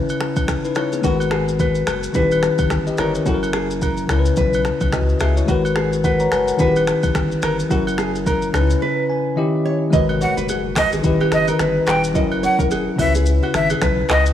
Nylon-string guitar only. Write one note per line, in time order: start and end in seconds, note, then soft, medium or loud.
1.04 1.16 F#4 loud
1.32 1.44 G#4 medium
1.60 1.81 B4 medium
2.15 2.36 B4 medium
2.99 3.11 A#4 medium
3.27 3.39 F#4 loud
3.54 3.66 G#4 medium
3.82 4.03 A#4 medium
4.38 4.59 B4 medium
5.21 5.33 G#4 medium
5.49 5.61 F#4 loud
5.77 5.89 G#4 medium
6.04 6.25 B4 medium
6.60 6.81 B4 medium
7.43 7.55 A#4 medium
7.71 7.83 F#4 loud
7.99 8.11 G#4 medium
8.27 8.48 A#4 medium
8.82 9.03 B4 medium
9.65 9.78 C#5 medium
9.93 10.05 D#5 medium
10.21 10.33 C#5 medium
10.37 10.46 B4 medium
10.49 10.61 G#4 medium
10.77 10.89 F#4 medium
10.93 11.02 G#4 medium
11.20 11.29 G4 medium
11.48 11.57 A#4 medium
11.60 11.81 B4 medium
12.15 12.28 D#5 medium
12.43 12.55 C#5 medium
12.59 12.68 A#4 medium
12.71 12.83 G#4 medium
12.99 13.11 F#4 medium
13.15 13.24 G#4 medium
13.43 13.51 F#4 medium
13.70 13.79 G#4 medium
13.82 14.03 B4 medium